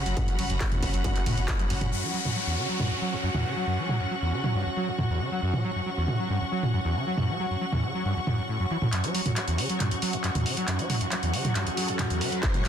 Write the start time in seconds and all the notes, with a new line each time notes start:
Already playing: C#4 F#4 F#5 B5
0.06 F#1 F#3, closed hi-hat
0.17 F#2, kick, closed hi-hat, mid tom, ride
0.28 F#3, closed hi-hat
0.39 F#1 F#3, open hi-hat, ride
0.50 F#1 F#2, closed hi-hat
0.61 F#3, kick, clap, closed hi-hat, ride
0.72 E2, closed hi-hat, mid tom
0.83 F#1 C#3, kick, open hi-hat, ride
0.94 F#1 F#3, closed hi-hat
1.04 G2, kick, closed hi-hat, ride
1.16 E2, clap, closed hi-hat
1.26 F#1 A2, mid tom, open hi-hat, ride
1.37 F#1 B2, closed hi-hat
1.48 F#2, kick, clap, closed hi-hat, ride
1.59 F#3, closed hi-hat
1.70 F#1 F#2, open hi-hat, ride
1.81 F#1 F#2, closed hi-hat, mid tom
1.92 F#2, downlifter
2.03 F#3
2.14 F#3
2.25 F#2, mid tom
2.36 F#3 C#6
2.47 E2
2.58 C#3
2.69 F#3
2.79 G2, mid tom
2.91 E2
3.01 F#3
3.13 E2
3.23 F#2
3.34 E2, mid tom
3.45 C#3
3.56 F#3
3.67 F#2
3.78 F#3
3.89 F#3, mid tom
4.00 F#2
4.11 F#3
4.22 E2
4.33 C#3
4.44 F#3, mid tom
4.55 G2
4.66 E2
4.77 F#3
4.88 E2
4.98 F#2, mid tom
5.10 E2
5.20 C#3
5.32 F#3
5.42 F#2
5.53 F#3, mid tom
5.64 F#3
5.75 F#2
5.86 F#3
5.97 E2
6.08 C#3, mid tom
6.19 F#3
6.30 G2
6.41 E2
6.52 F#3
6.63 E2, mid tom
6.74 F#2
6.85 E2
6.96 C#3
7.07 F#3
7.18 F#2, mid tom
7.29 F#3
7.39 F#3
7.51 F#2
7.61 F#3
7.72 E2, mid tom
7.83 C#3
7.94 F#3
8.05 G2
8.16 E2
8.27 F#2, mid tom
8.38 F#2
8.49 A2
8.60 F#2
8.71 E3
8.82 A2, mid tom
8.93 F#2 F#3 C#4 F#4, clap, closed hi-hat, riser
9.00 F#4
9.04 F#3, closed hi-hat
9.14 F#3, open hi-hat
9.26 F#2, closed hi-hat, mid tom
9.35 F#3 F#5, clap, closed hi-hat
9.48 E2, closed hi-hat
9.58 C#3, open hi-hat
9.70 F#3, closed hi-hat
9.80 G2, clap, closed hi-hat, mid tom
9.91 E2, closed hi-hat
10.02 F#3, open hi-hat
10.13 E2, closed hi-hat
10.24 F#2, clap, closed hi-hat
10.35 E2, closed hi-hat, mid tom
10.46 C#3, open hi-hat
10.57 F#3, closed hi-hat
10.68 F#2, clap, closed hi-hat
10.79 F#3, closed hi-hat
10.90 F#3, mid tom, open hi-hat
11.01 F#2, closed hi-hat
11.12 F#3, clap, closed hi-hat
11.23 E2, closed hi-hat
11.34 C#3, open hi-hat
11.45 F#3, closed hi-hat, mid tom
11.55 G2, clap, closed hi-hat
11.67 E2, closed hi-hat
11.77 F#3, open hi-hat
11.88 E2, closed hi-hat
11.99 F#2, clap, closed hi-hat, mid tom
12.10 E2, closed hi-hat
12.21 C#3, open hi-hat
12.32 F#3, closed hi-hat
12.43 F#2, kick, clap, closed hi-hat
12.54 F#3, closed hi-hat, mid tom
12.65 F#3, clap, open hi-hat